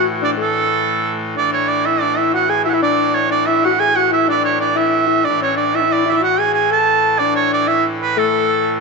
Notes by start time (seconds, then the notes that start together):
Already playing: A2 E3
0.22 D4 D5
0.37 A3 A4
1.35 A2 E3 D4 D5
1.53 C#5
1.68 D5
1.86 E4 E5
2.01 D4 D5
2.17 E4 E5
2.34 F#4 F#5
2.49 G#4 G#5
2.65 E4 E5
2.69 E4 F#5
2.74 E5
2.83 D4 D5
3.15 C#5
3.31 D4 D5
3.46 E4 E5
3.65 F#4 F#5
3.80 G#4 G#5
3.96 F#4 F#5
4.12 E4 E5
4.28 D4 D5
4.44 C#5
4.60 D4 D5
4.76 E4 E5
5.07 E4
5.24 A2 E3 D4 D5
5.42 C#4 C#5
5.57 D4 D5
5.74 E4 E5
5.80 D4
5.85 E4
5.92 D5
6.06 E4 E5
6.11 E4 D5 E5
6.21 F#4 F#5
6.38 G#4 G#5
6.54 G#5
6.71 A4 A5
7.19 D4 D5
7.36 C#5
7.53 D5
7.68 E4 E5
8.02 B4
8.17 A3 A4